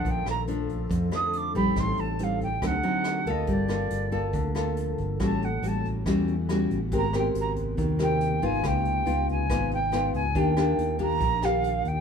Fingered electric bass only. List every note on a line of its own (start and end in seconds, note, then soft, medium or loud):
0.05 0.25 A#1 medium
0.26 0.86 A#1 medium
0.91 1.10 F2 medium
1.55 1.75 A#1 medium
1.77 1.96 A1 loud
1.98 2.58 A1 medium
2.62 2.82 D2 loud
3.26 3.46 D2 medium
3.47 3.87 G1 medium
3.91 4.31 G1 medium
4.33 4.94 D2 medium
4.98 5.18 G1 medium
5.20 5.60 A1 loud
5.62 6.02 A1 medium
6.06 6.66 E2 loud
6.70 6.90 A1 medium
6.92 7.31 G#1 loud
7.34 7.74 G#1 medium
7.78 8.38 D#2 loud
8.42 8.62 G#1 loud
8.64 9.03 C#2 loud
9.06 9.46 C#2 medium
9.49 10.10 G#1 loud
10.14 10.34 C#2 medium
10.35 10.75 D#2 loud
10.77 11.17 D#2 medium
11.21 11.81 A#1 medium
11.85 12.01 D#2 medium